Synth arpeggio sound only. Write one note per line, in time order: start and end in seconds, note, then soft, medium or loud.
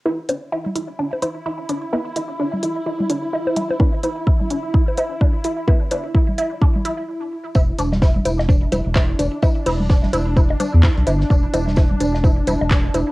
0.05 0.11 E4 medium
0.29 0.35 D4 medium
0.52 0.56 E4 medium
0.76 0.81 E4 medium
0.99 1.05 D4 medium
1.22 1.26 E4 medium
1.46 1.52 E4 medium
1.69 1.75 D4 medium
1.93 1.96 E4 medium
2.16 2.22 E4 medium
2.40 2.45 D4 medium
2.63 2.67 E4 medium
2.86 2.92 E4 medium
3.10 3.16 D4 medium
3.33 3.37 E4 medium
3.57 3.63 E4 medium
3.80 3.86 D4 medium
4.04 4.07 E4 medium
4.27 4.33 E4 medium
4.51 4.56 D4 medium
4.74 4.77 E4 medium
4.98 5.03 E4 medium
5.21 5.27 D4 medium
5.44 5.48 E4 medium
5.68 5.74 E4 medium
5.91 5.97 D4 medium
6.15 6.18 E4 medium
6.38 6.44 E4 medium
6.62 6.67 D4 medium
6.85 6.94 E4 medium
7.55 7.61 E4 medium
7.79 7.85 D4 medium
8.02 8.06 E4 medium
8.26 8.31 E4 medium
8.49 8.55 D4 medium
8.72 8.76 E4 medium
8.96 9.02 E4 medium
9.19 9.25 D4 medium
9.43 9.46 E4 medium
9.66 9.72 E4 medium
9.90 9.95 D4 medium
10.13 10.16 E4 medium
10.36 10.42 E4 medium
10.60 10.66 D4 medium
10.83 10.87 E4 medium
11.07 11.13 E4 medium
11.30 11.36 D4 medium
11.54 11.57 E4 medium
11.77 11.83 E4 medium
12.01 12.06 D4 medium
12.24 12.27 E4 medium
12.48 12.53 E4 medium
12.71 12.77 D4 medium
12.94 12.98 E4 medium